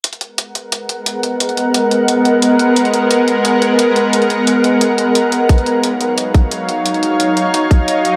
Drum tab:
HH |xxx-x-x-x-x-x-x-|xxx-x-x-x-x-x-x-|xxx-x-x-x-x-x-x-|xxx-x-x-x-x-x-x-|
BD |----------------|----------------|----------------|----------------|

HH |xxx-x-x-x-x-x-x-|xxx-x-x-x-x-x-x-|
BD |o---------o-----|----------o-----|